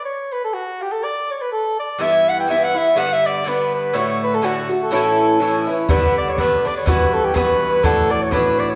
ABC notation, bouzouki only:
X:1
M:2/4
L:1/8
Q:"Swing" 1/4=123
K:Glyd
V:1 name="Bouzouki"
z4 | z4 | [G,,E,B,E]2 [G,,E,B,E] [E,B,E] | [G,,D,B,D]2 [G,,D,B,D]2 |
[A,,D,A,F]2 [A,,D,A,F] [D,A,F] | [A,,E,CE]2 [A,,E,CE] [E,CE] | [G,,D,B,D]2 [G,,D,B,D] [D,B,D] | [G,,E,B,F]2 [G,,E,B,F]2 |
[A,,E,DF]2 [A,,E,DF]2 |]